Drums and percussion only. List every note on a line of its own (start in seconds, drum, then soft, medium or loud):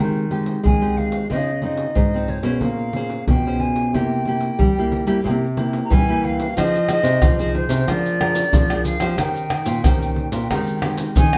0.15 pandeiro soft
0.31 pandeiro soft
0.46 pandeiro soft
0.65 pandeiro medium
0.65 surdo medium
0.83 pandeiro soft
0.98 pandeiro soft
1.12 pandeiro medium
1.31 pandeiro medium
1.31 surdo soft
1.48 pandeiro soft
1.62 pandeiro soft
1.77 pandeiro medium
1.96 pandeiro medium
1.96 surdo medium
2.13 pandeiro soft
2.28 pandeiro soft
2.43 pandeiro medium
2.61 pandeiro medium
2.61 surdo soft
2.79 pandeiro soft
2.93 pandeiro medium
3.10 pandeiro soft
3.27 pandeiro medium
3.27 surdo medium
3.45 pandeiro soft
3.60 pandeiro soft
3.76 pandeiro medium
3.94 pandeiro medium
3.94 surdo soft
4.12 pandeiro soft
4.25 pandeiro soft
4.41 pandeiro soft
4.59 pandeiro medium
4.59 surdo medium
4.77 pandeiro soft
4.92 pandeiro medium
5.07 pandeiro medium
5.26 pandeiro medium
5.26 surdo soft
5.42 pandeiro soft
5.57 pandeiro medium
5.73 pandeiro medium
5.91 pandeiro medium
5.91 surdo medium
6.08 pandeiro soft
6.24 pandeiro soft
6.40 pandeiro medium
6.58 pandeiro medium
6.58 tamborim medium
6.58 maracas medium
6.58 surdo medium
6.75 pandeiro soft
6.75 maracas soft
6.89 pandeiro soft
6.89 tamborim medium
6.89 maracas medium
7.04 pandeiro medium
7.04 maracas medium
7.22 pandeiro medium
7.22 tamborim medium
7.22 maracas medium
7.22 surdo medium
7.39 pandeiro soft
7.39 maracas soft
7.55 pandeiro medium
7.70 pandeiro medium
7.70 maracas medium
7.88 pandeiro medium
7.88 tamborim medium
7.88 maracas medium
7.88 surdo medium
8.06 pandeiro soft
8.06 maracas soft
8.21 pandeiro medium
8.21 tamborim medium
8.35 pandeiro medium
8.35 maracas medium
8.53 pandeiro medium
8.53 maracas medium
8.53 surdo medium
8.70 pandeiro soft
8.70 tamborim medium
8.70 maracas soft
8.85 pandeiro medium
8.85 maracas medium
9.00 pandeiro medium
9.00 tamborim medium
9.00 maracas medium
9.18 pandeiro medium
9.18 tamborim medium
9.18 maracas medium
9.18 surdo medium
9.36 pandeiro soft
9.36 maracas soft
9.50 pandeiro medium
9.50 tamborim medium
9.66 pandeiro medium
9.66 maracas medium
9.84 pandeiro medium
9.84 tamborim medium
9.84 maracas medium
9.84 surdo medium
10.02 pandeiro soft
10.02 maracas soft
10.16 pandeiro medium
10.32 pandeiro medium
10.32 maracas medium
10.51 pandeiro medium
10.51 tamborim medium
10.51 maracas medium
10.51 surdo medium
10.67 pandeiro soft
10.67 maracas soft
10.82 pandeiro medium
10.82 tamborim medium
10.98 pandeiro medium
10.98 maracas medium
11.16 pandeiro medium
11.16 maracas medium
11.16 surdo medium
11.33 pandeiro soft
11.33 tamborim medium
11.33 maracas soft